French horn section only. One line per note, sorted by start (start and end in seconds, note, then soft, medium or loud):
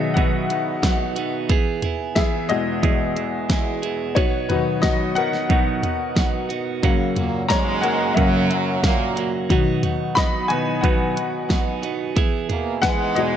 7.17 7.43 A#2 medium
7.17 7.43 A#3 medium
7.50 8.13 G#2 loud
7.50 8.13 G#3 loud
8.16 8.79 F#2 loud
8.16 8.79 F#3 loud
8.84 9.31 A#2 loud
8.84 9.31 A#3 loud
12.50 12.77 B2 medium
12.50 12.77 A#3 medium
12.84 13.37 G#2 loud
12.84 13.37 G#3 loud